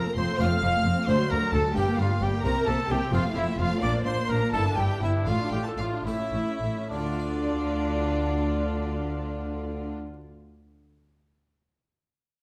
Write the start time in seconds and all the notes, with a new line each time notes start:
Already playing: F2 A#4 A#5
0.07 A3
0.16 F1 F2 C4 C5 C6
0.31 A3
0.40 F1 F2 A3 C4 A4 F5 F6
0.53 A3
0.62 F1 F2 C4
0.75 A3
0.85 F1 F2 C4
0.96 A3
1.07 D2 A3 D4 F#4 C5 C6
1.19 F#3
1.30 D2 A3 A#4 A#5
1.42 F#3
1.52 D2 A3 A4 A5
1.65 F#3
1.75 G1 G2 G3 A#3 D4 G4 G5
1.87 A#3
1.98 G1 G2 G3 F4 F5
2.10 A#3
2.20 G1 G2 G3 G4 G5
2.33 A#3
2.43 C2 C3 A#3 C4 E4 A#4 A#5
2.57 C4
2.66 C2 C3 A#3 A4 A5
2.79 C4
2.89 C2 C3 A#3 G4 G5
3.01 C4
3.12 F1 F2 A3 C4 F4 F5
3.24 A3
3.34 F1 F2 C4 E4 E5
3.46 A3
3.58 F1 F2 C4 F4 F5
3.71 A3
3.81 A#1 A#2 A#3 D4 F4 D5 D6
3.95 A#3
4.04 A#1 A#2 D4 C5 C6
4.19 A#3
4.29 A#1 A#2 D4 A#4 A#5
4.43 A#3
4.52 G1 G2 A#3 D4 E4 A4 A5
4.67 D4
4.77 G1 G2 E4 G4 G5
4.93 D4
5.01 G1 G2 E4 E5
5.17 D4
5.26 A1 A2 A3 D4 F4 F5
5.30 F4
5.42 D4
5.52 A1 A2 F4 G4 G5
5.65 D4 A4 A5
5.77 A1 A2 F4 F5
5.94 D4
6.04 A1 A2 A3 C#4 E4 G4 E5
6.20 C#4
6.32 A1 A2 E4
6.49 C#4
6.60 A1 A2 E4
6.78 C#4
6.90 D2 D3 D4 F4 D5
6.99 A3
7.06 D4
7.12 F4
7.20 D5